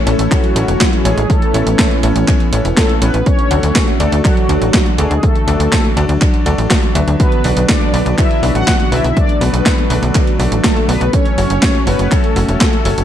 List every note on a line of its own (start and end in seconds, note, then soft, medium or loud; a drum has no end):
0.00 3.22 E3 medium
0.00 1.28 A3 medium
0.00 3.22 C#4 medium
0.07 0.16 A1 loud
0.07 0.30 A3 medium
0.07 0.53 C#4 medium
0.07 0.53 E4 medium
0.07 0.53 A4 medium
0.07 0.30 A4 loud
0.07 0.53 C#5 loud
0.07 closed hi-hat loud
0.19 0.28 A1 medium
0.19 closed hi-hat medium
0.31 1.01 F#3 medium
0.31 1.07 F#4 loud
0.31 kick loud
0.31 clap medium
0.31 closed hi-hat medium
0.44 closed hi-hat soft
0.56 0.65 A1 loud
0.56 1.02 C#4 medium
0.56 1.02 E4 medium
0.56 1.02 A4 medium
0.56 1.02 C#5 medium
0.56 closed hi-hat loud
0.68 0.77 E1 medium
0.68 closed hi-hat medium
0.81 kick loud
0.81 snare loud
0.81 clap loud
0.81 closed hi-hat medium
0.93 closed hi-hat soft
1.05 1.14 A1 medium
1.05 1.28 G#3 medium
1.05 1.20 C#4 medium
1.05 1.20 E4 medium
1.05 1.30 G#4 loud
1.05 1.20 A4 medium
1.05 1.20 C#5 loud
1.05 closed hi-hat loud
1.17 1.26 A1 medium
1.17 closed hi-hat medium
1.30 2.24 A3 medium
1.30 3.24 B3 medium
1.30 2.24 A4 loud
1.30 kick loud
1.30 closed hi-hat medium
1.42 closed hi-hat soft
1.54 1.63 A1 loud
1.54 2.00 C#4 medium
1.54 2.00 E4 medium
1.54 2.00 A4 medium
1.54 2.00 C#5 medium
1.54 closed hi-hat loud
1.67 1.75 A1 medium
1.67 closed hi-hat medium
1.79 kick loud
1.79 snare loud
1.79 clap loud
1.79 closed hi-hat medium
1.91 closed hi-hat soft
2.03 2.12 A1 loud
2.03 2.50 C#4 medium
2.03 2.50 E4 medium
2.03 2.50 A4 medium
2.03 2.50 C#5 loud
2.03 closed hi-hat loud
2.16 2.25 A1 medium
2.16 closed hi-hat medium
2.28 kick loud
2.28 clap medium
2.28 closed hi-hat medium
2.40 closed hi-hat soft
2.53 2.62 A1 medium
2.53 2.99 C#4 medium
2.53 2.99 E4 medium
2.53 2.99 A4 medium
2.53 2.99 C#5 medium
2.53 closed hi-hat medium
2.65 2.74 E1 medium
2.65 closed hi-hat medium
2.77 3.00 A3 medium
2.77 3.02 A4 loud
2.77 kick loud
2.77 snare loud
2.77 clap loud
2.77 closed hi-hat medium
2.89 closed hi-hat soft
3.02 3.11 A1 medium
3.02 3.25 B3 medium
3.02 3.17 C#4 medium
3.02 3.17 E4 medium
3.02 3.17 A4 medium
3.02 3.27 B4 loud
3.02 3.17 C#5 loud
3.02 closed hi-hat loud
3.14 3.23 A1 medium
3.14 closed hi-hat medium
3.26 11.09 D3 loud
3.26 13.04 F#3 medium
3.26 5.21 A3 medium
3.26 3.96 C#4 medium
3.26 3.96 C#5 loud
3.26 kick loud
3.26 closed hi-hat medium
3.39 closed hi-hat soft
3.51 3.60 D2 loud
3.51 3.97 D3 medium
3.51 3.97 F#4 medium
3.51 3.97 A4 medium
3.51 3.97 F#5 medium
3.51 closed hi-hat medium
3.63 3.72 D2 medium
3.63 closed hi-hat medium
3.75 kick loud
3.75 snare loud
3.75 clap loud
3.75 closed hi-hat medium
3.88 closed hi-hat soft
4.00 4.09 D2 loud
4.00 4.23 A3 medium
4.00 4.46 D4 medium
4.00 4.46 F#4 medium
4.00 4.23 A4 loud
4.00 4.46 A4 medium
4.00 4.46 D5 loud
4.00 closed hi-hat medium
4.12 4.21 D2 medium
4.12 closed hi-hat soft
4.25 4.95 F#3 medium
4.25 4.94 F#4 loud
4.25 kick loud
4.25 clap medium
4.25 closed hi-hat medium
4.37 closed hi-hat soft
4.49 4.58 D2 medium
4.49 4.96 D4 medium
4.49 4.96 F#4 medium
4.49 4.96 A4 medium
4.49 4.96 D5 medium
4.49 closed hi-hat medium
4.62 4.70 A1 medium
4.62 closed hi-hat medium
4.74 kick loud
4.74 snare loud
4.74 clap loud
4.74 closed hi-hat medium
4.86 closed hi-hat soft
4.98 5.07 D2 medium
4.98 5.22 G#3 medium
4.98 5.13 D4 medium
4.98 5.13 F#4 medium
4.98 5.24 G#4 medium
4.98 5.13 A4 medium
4.98 5.13 D5 loud
4.98 closed hi-hat medium
5.11 5.20 D2 medium
5.11 closed hi-hat soft
5.23 6.18 A3 medium
5.23 6.18 A4 loud
5.23 kick loud
5.23 closed hi-hat soft
5.35 closed hi-hat soft
5.48 5.57 D2 medium
5.48 5.94 D4 medium
5.48 5.94 F#4 medium
5.48 5.94 A4 medium
5.48 5.94 D5 medium
5.48 closed hi-hat medium
5.60 5.69 D2 medium
5.60 closed hi-hat soft
5.72 kick loud
5.72 snare loud
5.72 clap medium
5.72 closed hi-hat medium
5.85 closed hi-hat soft
5.97 6.06 D2 loud
5.97 6.43 D4 medium
5.97 6.43 F#4 medium
5.97 6.43 A4 medium
5.97 6.43 D5 loud
5.97 closed hi-hat medium
6.09 6.18 D2 medium
6.09 closed hi-hat medium
6.21 kick loud
6.21 clap medium
6.21 closed hi-hat medium
6.34 closed hi-hat soft
6.46 6.55 D2 medium
6.46 6.92 D4 medium
6.46 6.92 F#4 medium
6.46 6.92 A4 medium
6.46 6.92 D5 loud
6.46 closed hi-hat medium
6.58 6.67 A1 medium
6.58 closed hi-hat medium
6.70 kick loud
6.70 snare loud
6.70 clap medium
6.70 closed hi-hat medium
6.83 closed hi-hat soft
6.95 7.04 D2 medium
6.95 7.41 D4 medium
6.95 7.41 F#4 medium
6.95 7.41 B4 medium
6.95 7.41 E5 medium
6.95 closed hi-hat medium
7.08 7.16 D2 medium
7.08 closed hi-hat soft
7.19 9.14 B3 medium
7.19 7.66 B3 medium
7.19 7.66 B4 loud
7.19 kick loud
7.19 closed hi-hat soft
7.32 closed hi-hat soft
7.44 7.53 B1 loud
7.44 7.91 D4 medium
7.44 7.91 F#4 medium
7.44 7.91 B4 medium
7.44 7.91 D5 medium
7.44 open hi-hat loud
7.57 7.66 B1 medium
7.57 closed hi-hat medium
7.69 8.15 D4 medium
7.69 8.15 D5 medium
7.69 kick loud
7.69 snare loud
7.69 clap medium
7.69 closed hi-hat medium
7.81 closed hi-hat soft
7.93 8.02 B1 loud
7.93 8.40 D4 medium
7.93 8.40 F#4 medium
7.93 8.40 B4 medium
7.93 8.40 D5 loud
7.93 open hi-hat loud
8.06 8.15 B1 medium
8.06 closed hi-hat soft
8.18 8.53 E4 medium
8.18 8.56 E5 loud
8.18 kick loud
8.18 clap medium
8.18 closed hi-hat medium
8.31 closed hi-hat soft
8.43 8.52 B1 medium
8.43 8.89 D4 medium
8.43 8.89 F#4 medium
8.43 8.89 B4 medium
8.43 8.89 D5 medium
8.43 open hi-hat loud
8.55 8.64 A1 medium
8.55 8.90 F#4 medium
8.55 8.93 F#5 loud
8.55 closed hi-hat medium
8.67 kick loud
8.67 snare loud
8.67 clap medium
8.67 closed hi-hat medium
8.80 closed hi-hat soft
8.92 9.01 B1 medium
8.92 9.07 D4 medium
8.92 9.15 E4 medium
8.92 9.07 F#4 medium
8.92 9.07 B4 medium
8.92 9.07 D5 loud
8.92 9.17 E5 loud
8.92 open hi-hat loud
9.04 9.13 B1 medium
9.04 closed hi-hat soft
9.17 13.04 A3 medium
9.17 9.40 D4 medium
9.17 9.42 D5 loud
9.17 kick loud
9.17 closed hi-hat medium
9.29 closed hi-hat soft
9.41 9.50 B1 medium
9.41 10.36 B3 medium
9.41 9.87 D4 medium
9.41 9.87 F#4 medium
9.41 9.87 B4 medium
9.41 10.36 B4 medium
9.41 9.87 D5 medium
9.41 open hi-hat loud
9.53 9.62 B1 medium
9.53 closed hi-hat soft
9.66 kick loud
9.66 snare loud
9.66 clap medium
9.66 closed hi-hat medium
9.78 closed hi-hat soft
9.90 9.99 B1 loud
9.90 10.37 D4 medium
9.90 10.37 F#4 medium
9.90 10.37 B4 medium
9.90 10.37 D5 loud
9.90 open hi-hat loud
10.03 10.11 B1 medium
10.03 closed hi-hat medium
10.15 kick loud
10.15 clap medium
10.15 closed hi-hat medium
10.27 closed hi-hat soft
10.39 10.48 B1 medium
10.39 10.86 D4 medium
10.39 10.86 F#4 medium
10.39 10.86 B4 medium
10.39 10.86 D5 medium
10.39 open hi-hat loud
10.52 10.61 A1 medium
10.52 closed hi-hat medium
10.64 10.87 A3 medium
10.64 10.89 A4 loud
10.64 kick loud
10.64 snare loud
10.64 clap medium
10.64 closed hi-hat medium
10.77 closed hi-hat soft
10.89 10.98 B1 medium
10.89 11.12 B3 medium
10.89 11.04 D4 medium
10.89 11.04 F#4 medium
10.89 11.04 B4 medium
10.89 11.12 B4 loud
10.89 11.04 D5 loud
10.89 open hi-hat loud
11.01 11.10 B1 medium
11.01 closed hi-hat medium
11.13 13.04 C#4 medium
11.13 11.84 C#4 loud
11.13 11.89 C#5 loud
11.13 kick loud
11.13 closed hi-hat medium
11.26 closed hi-hat soft
11.38 11.47 F#1 loud
11.38 11.84 C#4 medium
11.38 11.84 F#4 medium
11.38 11.84 A4 medium
11.38 11.84 C#5 medium
11.38 open hi-hat loud
11.50 11.59 F#1 medium
11.50 closed hi-hat medium
11.62 kick loud
11.62 snare loud
11.62 clap medium
11.62 closed hi-hat medium
11.75 closed hi-hat soft
11.87 11.96 F#1 medium
11.87 12.10 B3 medium
11.87 12.33 C#4 medium
11.87 12.33 F#4 medium
11.87 12.33 A4 medium
11.87 12.12 B4 loud
11.87 12.33 C#5 loud
11.87 open hi-hat loud
11.99 12.08 F#1 medium
11.99 closed hi-hat medium
12.12 13.04 A3 medium
12.12 13.04 A4 loud
12.12 kick loud
12.12 clap medium
12.12 closed hi-hat medium
12.24 closed hi-hat soft
12.36 12.45 F#1 loud
12.36 12.82 C#4 medium
12.36 12.82 F#4 medium
12.36 12.82 A4 medium
12.36 12.82 C#5 medium
12.36 open hi-hat loud
12.48 12.57 E1 medium
12.48 closed hi-hat medium
12.61 kick loud
12.61 snare loud
12.61 clap loud
12.61 closed hi-hat medium
12.73 closed hi-hat soft
12.85 12.94 F#1 loud
12.85 13.00 C#4 medium
12.85 13.00 F#4 medium
12.85 13.00 A4 medium
12.85 13.00 C#5 loud
12.85 open hi-hat loud
12.98 13.04 F#1 medium
12.98 closed hi-hat medium